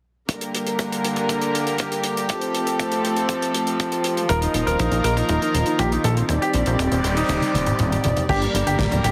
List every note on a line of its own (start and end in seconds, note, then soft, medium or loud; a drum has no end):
0.29 2.27 D3 medium
0.29 2.27 G3 medium
0.29 2.27 A#3 medium
0.29 1.01 A#3 medium
0.29 1.01 D4 medium
0.29 4.25 G4 medium
0.29 2.27 A#4 medium
0.29 1.01 D5 medium
0.29 kick loud
0.29 closed hi-hat medium
0.41 closed hi-hat medium
0.55 closed hi-hat medium
0.67 closed hi-hat medium
0.79 kick loud
0.79 closed hi-hat medium
0.92 closed hi-hat medium
1.04 2.26 A#3 medium
1.04 2.26 D4 medium
1.04 closed hi-hat medium
1.16 kick medium
1.16 closed hi-hat soft
1.29 kick loud
1.29 closed hi-hat medium
1.42 closed hi-hat medium
1.55 closed hi-hat medium
1.67 closed hi-hat medium
1.78 kick loud
1.78 closed hi-hat medium
1.92 closed hi-hat medium
2.04 closed hi-hat medium
2.17 closed hi-hat soft
2.29 6.25 F3 medium
2.29 3.01 A3 medium
2.29 4.27 A3 medium
2.29 4.27 C4 medium
2.29 3.01 F4 medium
2.29 3.01 G4 medium
2.29 4.27 A4 medium
2.29 3.01 C5 medium
2.29 kick loud
2.29 closed hi-hat medium
2.41 closed hi-hat soft
2.55 closed hi-hat medium
2.67 closed hi-hat medium
2.79 kick loud
2.79 closed hi-hat medium
2.92 closed hi-hat soft
3.04 4.26 A3 medium
3.04 4.26 F4 medium
3.04 4.26 G4 medium
3.04 4.26 C5 loud
3.04 closed hi-hat medium
3.16 closed hi-hat medium
3.29 kick loud
3.29 closed hi-hat medium
3.42 closed hi-hat medium
3.54 closed hi-hat medium
3.67 closed hi-hat soft
3.80 kick loud
3.80 closed hi-hat medium
3.92 closed hi-hat medium
4.04 closed hi-hat medium
4.17 closed hi-hat soft
4.29 4.48 D#1 loud
4.29 8.25 D#3 medium
4.29 6.27 A#3 medium
4.29 5.01 D#4 medium
4.29 6.27 F4 medium
4.29 6.27 A#4 medium
4.29 4.38 A#4 medium
4.29 5.01 D#5 medium
4.29 kick loud
4.29 closed hi-hat medium
4.42 4.50 D#4 medium
4.42 closed hi-hat medium
4.54 4.64 D#1 medium
4.54 4.63 D#4 medium
4.54 closed hi-hat medium
4.67 4.76 D#1 medium
4.67 4.75 A#4 medium
4.67 closed hi-hat soft
4.79 4.89 A#1 medium
4.79 4.88 D#4 medium
4.79 kick loud
4.79 closed hi-hat medium
4.92 5.01 A#1 medium
4.92 5.00 D#4 medium
4.92 closed hi-hat soft
5.04 5.23 A#1 medium
5.04 6.26 A#3 medium
5.04 6.26 D#4 medium
5.04 6.26 F4 medium
5.04 5.13 A#4 medium
5.04 6.26 D#5 medium
5.04 closed hi-hat loud
5.17 5.25 D#4 medium
5.17 kick medium
5.17 closed hi-hat soft
5.29 5.39 D#1 medium
5.29 5.38 D#4 medium
5.29 kick loud
5.29 closed hi-hat medium
5.42 5.50 D#4 medium
5.42 closed hi-hat soft
5.54 5.63 D#1 medium
5.54 closed hi-hat loud
5.66 5.75 D#4 medium
5.66 closed hi-hat soft
5.79 5.98 A#1 medium
5.79 5.88 G4 medium
5.79 kick loud
5.79 closed hi-hat medium
5.92 6.00 D#4 medium
5.92 closed hi-hat medium
6.04 6.23 A#1 medium
6.04 6.13 A4 medium
6.04 closed hi-hat medium
6.17 6.25 C4 medium
6.17 closed hi-hat soft
6.29 6.38 D#1 medium
6.29 8.27 G3 medium
6.29 8.27 C4 medium
6.29 6.38 C4 medium
6.29 7.01 C4 medium
6.29 7.01 D#4 medium
6.29 8.27 G4 medium
6.29 7.01 G4 medium
6.29 7.01 D5 loud
6.29 8.27 D5 medium
6.29 kick loud
6.29 closed hi-hat medium
6.29 noise sweep medium
6.42 6.50 G4 medium
6.42 closed hi-hat medium
6.54 6.63 A#1 medium
6.54 6.63 C4 medium
6.54 closed hi-hat medium
6.66 6.76 A#1 medium
6.66 6.75 C4 medium
6.66 closed hi-hat medium
6.79 6.88 D#1 medium
6.79 kick loud
6.79 closed hi-hat medium
6.92 7.01 D#1 medium
6.92 7.00 C4 medium
6.92 closed hi-hat medium
7.04 7.23 D#1 medium
7.04 8.26 C4 medium
7.04 7.13 C4 medium
7.04 8.26 D#4 medium
7.04 8.26 G4 medium
7.04 8.26 D5 medium
7.04 closed hi-hat medium
7.17 8.19 D#4 medium
7.17 closed hi-hat medium
7.29 7.39 D#1 medium
7.29 kick loud
7.29 closed hi-hat medium
7.29 high tom medium
7.41 closed hi-hat medium
7.41 high tom medium
7.54 7.73 D#1 medium
7.54 closed hi-hat medium
7.54 high tom medium
7.66 closed hi-hat medium
7.66 mid tom medium
7.79 7.98 D#1 medium
7.79 kick loud
7.79 closed hi-hat medium
7.79 mid tom medium
7.92 closed hi-hat medium
7.92 mid tom medium
8.04 8.13 D#1 medium
8.04 closed hi-hat medium
8.04 mid tom loud
8.17 closed hi-hat soft
8.17 mid tom medium
8.29 8.48 G1 loud
8.29 9.12 D3 medium
8.29 9.12 G3 medium
8.29 9.01 A#3 medium
8.29 9.12 A#3 medium
8.29 9.01 D4 medium
8.29 9.01 G4 medium
8.29 8.38 G4 medium
8.29 9.12 G4 medium
8.29 9.12 A#4 medium
8.29 9.01 D5 loud
8.29 kick loud
8.29 closed hi-hat medium
8.29 crash medium
8.42 8.50 G3 medium
8.42 closed hi-hat medium
8.54 8.64 G1 medium
8.54 8.63 G3 medium
8.54 closed hi-hat loud
8.67 8.76 G1 medium
8.67 8.75 G4 medium
8.67 closed hi-hat medium
8.79 8.88 D1 medium
8.79 8.88 G3 medium
8.79 kick loud
8.79 snare loud
8.79 closed hi-hat medium
8.92 9.01 D1 medium
8.92 9.00 G3 medium
8.92 closed hi-hat medium
8.92 high tom medium
9.04 9.12 D1 loud
9.04 9.12 A#3 medium
9.04 9.12 D4 medium
9.04 9.12 G4 medium
9.04 9.12 D5 medium
9.04 closed hi-hat loud